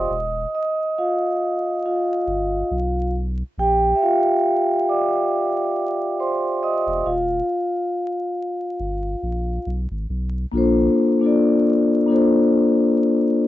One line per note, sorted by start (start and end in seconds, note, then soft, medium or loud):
0.00 0.11 C5 medium
0.00 0.53 D#5 medium
0.00 0.11 C6 medium
0.00 0.50 D#6 medium
0.10 0.46 D#1 loud
0.55 0.99 D#5 medium
0.55 0.95 D#6 medium
0.98 1.80 F4 medium
0.98 1.85 F5 loud
1.86 3.11 F4 medium
1.86 3.11 F5 medium
2.27 2.63 G1 loud
2.71 3.43 B1 loud
3.58 3.94 A#1 loud
3.58 3.93 G4 medium
3.58 3.97 G5 loud
3.95 4.01 E5 medium
4.02 4.85 F4 medium
4.02 4.91 F5 loud
4.89 6.23 D5 medium
4.89 6.15 D6 medium
6.20 6.64 C5 medium
6.20 6.60 C6 medium
6.63 7.07 D#5 medium
6.63 7.03 D#6 medium
6.87 7.02 E1 medium
7.06 7.42 D#1 medium
7.06 8.76 F4 medium
7.06 8.75 F5 medium
8.80 9.16 G1 loud
9.23 9.59 A#1 medium
9.66 9.87 B1 loud
9.91 10.06 G#1 medium
10.10 10.46 B1 medium
10.52 10.89 A#1 medium
10.52 11.07 A#3 medium
10.52 11.07 D4 medium
10.52 11.08 F4 medium
10.56 11.09 A4 medium
10.56 11.09 C5 medium
11.20 11.89 A#3 medium
11.20 11.90 D4 medium
11.20 11.91 F4 medium
11.24 11.91 A4 medium
11.24 11.92 D5 medium
12.06 13.47 A#3 medium
12.06 13.48 D4 medium
12.06 13.48 F4 medium
12.11 13.48 A4 medium
12.11 13.48 C5 medium